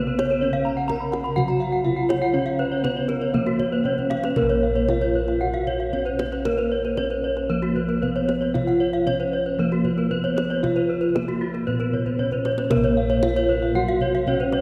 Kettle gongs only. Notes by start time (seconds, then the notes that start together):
Already playing: C#3
0.42 C#4
0.89 B3
1.36 C#3
1.85 B3
2.33 C#4
2.83 B3
3.34 F3
3.85 B3
4.37 A#4
4.42 A#1
4.89 B3
5.93 B3
6.45 A#4
6.98 B3
7.50 F3
8.02 B3
8.54 F4
9.06 B3
9.59 F3
10.11 B3
10.63 F4
11.15 B3
11.68 A#2
12.19 B3
12.70 A#4
12.76 A#1
13.23 B3
14.27 B3